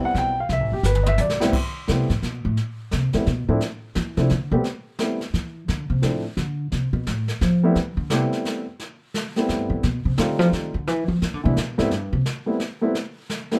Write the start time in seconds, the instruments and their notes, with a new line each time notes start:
Already playing: upright piano G3 B3 C4 E4
0.02 upright piano F#5, muted upright bass stroke
0.15 upright bass B1, upright piano G5, kick, snare
0.40 upright piano F5
0.49 upright bass C2, upright piano E5, brush sweep, kick, snare
0.60 upright bass A1
0.72 upright bass G1, upright piano G4
0.83 upright bass G1, upright piano B4, snare, hi-hat pedal
0.95 mid tom
1.03 upright piano D#5, mid tom
1.08 upright piano E5
1.18 upright bass B1, upright piano D5, hi-hat pedal, high tom
1.30 snare
1.40 upright piano A2 G3 B3 C4 E4, snare
1.53 brush sweep, kick, snare, crash
1.87 upright bass C3, upright piano G3 A3 B3 C4 E4, snare
2.10 upright bass A2, snare
2.22 upright bass B2, snare
2.45 upright bass A2
2.57 brush sweep, snare
2.91 upright bass C3, snare
3.13 upright bass A2, upright piano G3 A3 B3 C4 E4, snare
3.26 upright bass B2, snare
3.48 upright bass A2, upright piano F3 A3 C4 D4 E4
3.61 brush sweep, snare
3.95 upright bass E3, snare
4.17 upright bass C3, upright piano F3 A3 C4 D4 E4, snare
4.29 upright bass D3, snare
4.51 upright bass B2, upright piano G3 A3 B3 C4 G4
4.64 brush sweep, snare
4.99 upright piano G3 A3 B3 C4 E4, snare
5.21 snare
5.34 upright bass E3, snare
5.68 upright bass D3, brush sweep, snare
5.90 upright bass C3
6.02 upright bass A2, upright piano F3 A3 C4 D4 E4, snare
6.37 upright bass D3, snare
6.72 upright bass C3, brush sweep, snare
6.93 upright bass B2
7.07 upright bass A2, snare
7.28 snare
7.41 upright bass F3, snare
7.63 upright piano G3 A3 B3 C4 E4
7.75 upright bass E3, brush sweep, snare
7.97 upright bass D3
8.10 upright bass C3, upright piano G3 A3 B3 C4 E4, snare
8.32 snare
8.45 snare
8.80 brush sweep, snare
9.14 snare
9.36 upright piano G3 A3 B3 C4 E4, snare
9.49 upright bass G2, snare
9.70 upright bass A2
9.83 upright bass B2, brush sweep, snare
10.05 upright bass C3
10.18 upright bass D3, upright piano G3 A3 C4 D#4 F4, snare
10.39 upright bass F3, snare
10.53 snare
10.74 upright bass D3
10.87 upright bass E3, brush sweep, snare
11.08 upright bass F3
11.22 upright bass E3, snare
11.34 upright bass D3
11.44 upright bass C3, upright piano E3 G#3 B3 D4 E4
11.57 upright bass B2, snare
11.78 upright bass G#2, upright piano G3 A3 B3 C4 E4, snare
11.91 upright bass G2, brush sweep, snare
12.13 upright bass C3
12.26 snare
12.46 upright piano G3 A3 B3 C4 E4
12.60 snare
12.81 upright piano G3 A3 B3 C4 E4
12.95 brush sweep, snare
13.30 snare
13.51 upright piano G3 A3 B3 C4 E4, snare